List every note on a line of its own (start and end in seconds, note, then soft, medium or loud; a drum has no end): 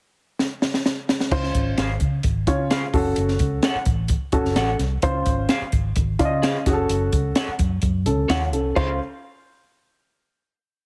0.39 snare soft
0.62 snare medium
0.74 snare medium
0.86 snare medium
1.09 snare medium
1.20 snare medium
1.31 1.50 C#2 medium
1.31 1.85 C#4 medium
1.31 1.86 F4 medium
1.31 1.86 C5 medium
1.31 kick loud
1.31 crash medium
1.44 snare soft
1.55 1.73 G#1 medium
1.55 kick medium
1.55 closed hi-hat medium
1.77 1.96 G#1 medium
1.77 1.91 G#4 medium
1.77 1.91 C5 medium
1.77 1.91 F5 medium
1.77 snare medium
1.77 closed hi-hat medium
2.00 2.19 C#3 medium
2.00 kick medium
2.00 closed hi-hat medium
2.23 2.43 G#1 medium
2.23 kick medium
2.23 closed hi-hat medium
2.47 2.84 C#3 medium
2.47 2.88 C#4 medium
2.47 2.88 F4 medium
2.47 2.88 C#5 medium
2.47 kick medium
2.47 closed hi-hat medium
2.70 2.83 G#4 medium
2.70 2.84 C5 medium
2.70 2.84 F5 medium
2.70 snare medium
2.70 closed hi-hat medium
2.93 3.12 F#1 medium
2.93 3.68 C#4 medium
2.93 3.68 F#4 medium
2.93 3.68 A4 medium
2.93 kick loud
2.93 open hi-hat soft
3.16 3.36 F#1 loud
3.16 closed hi-hat medium
3.28 snare soft
3.39 3.58 C#2 medium
3.39 kick medium
3.39 closed hi-hat medium
3.63 3.76 A4 medium
3.63 3.77 C#5 medium
3.63 3.77 F#5 medium
3.63 snare loud
3.63 closed hi-hat medium
3.75 muted fingered electric bass stroke soft
3.85 4.14 A1 medium
3.85 kick medium
3.85 closed hi-hat medium
4.08 kick medium
4.08 closed hi-hat medium
4.32 4.42 F1 medium
4.32 4.73 C#4 medium
4.32 4.74 F#4 medium
4.32 4.74 A4 medium
4.32 kick medium
4.32 closed hi-hat medium
4.44 4.54 F#1 medium
4.44 snare soft
4.55 4.74 A1 medium
4.55 4.69 A4 medium
4.55 4.70 C#5 medium
4.55 4.70 F#5 medium
4.55 snare loud
4.55 closed hi-hat medium
4.79 4.98 C2 medium
4.79 snare soft
4.79 closed hi-hat medium
5.02 5.21 C#2 loud
5.02 5.57 C#4 medium
5.02 5.57 F4 medium
5.02 5.57 C5 medium
5.02 kick loud
5.02 closed hi-hat medium
5.26 5.45 G#1 medium
5.26 kick medium
5.26 closed hi-hat medium
5.49 5.62 G#4 medium
5.49 5.62 C5 medium
5.49 5.63 F5 medium
5.49 snare medium
5.49 closed hi-hat medium
5.61 muted fingered electric bass stroke soft
5.72 5.91 G#1 medium
5.72 kick medium
5.72 closed hi-hat medium
5.96 6.15 G#1 medium
5.96 kick medium
5.96 closed hi-hat medium
6.19 6.56 C#3 loud
6.19 6.60 C#4 medium
6.19 6.60 F4 medium
6.19 6.25 D5 medium
6.19 kick medium
6.19 closed hi-hat medium
6.25 6.63 D#5 medium
6.42 6.55 G#4 medium
6.42 6.56 C5 medium
6.42 6.56 F5 medium
6.42 snare loud
6.42 closed hi-hat medium
6.66 6.85 F#1 medium
6.66 7.41 C#4 medium
6.66 7.41 F#4 medium
6.66 6.72 G#4 medium
6.66 kick loud
6.66 snare soft
6.66 closed hi-hat medium
6.73 7.44 A4 medium
6.89 7.08 F#1 loud
6.89 closed hi-hat medium
7.13 7.31 C#2 medium
7.13 kick medium
7.13 closed hi-hat medium
7.35 7.49 A4 medium
7.35 7.49 C#5 medium
7.35 7.49 F#5 loud
7.35 snare loud
7.35 closed hi-hat medium
7.48 muted fingered electric bass stroke soft
7.59 7.78 F#2 medium
7.59 kick medium
7.59 closed hi-hat medium
7.82 8.07 F#2 loud
7.82 kick medium
7.82 closed hi-hat medium
8.05 8.24 C#2 medium
8.05 8.28 C#4 soft
8.05 8.28 A4 medium
8.05 closed hi-hat medium
8.28 8.53 D#2 medium
8.28 8.52 F4 soft
8.28 8.42 A4 medium
8.28 8.51 C#5 medium
8.28 8.42 C#5 medium
8.28 8.42 F#5 medium
8.28 snare loud
8.28 closed hi-hat medium
8.53 8.71 C2 medium
8.53 8.75 C#4 soft
8.53 8.97 A4 medium
8.53 closed hi-hat medium
8.75 8.98 C#2 medium
8.75 8.98 C#4 medium
8.75 8.98 F4 medium
8.75 8.90 G#4 medium
8.75 8.98 C5 medium
8.75 8.90 C5 medium
8.75 8.91 F5 medium
8.75 kick loud
8.75 crash medium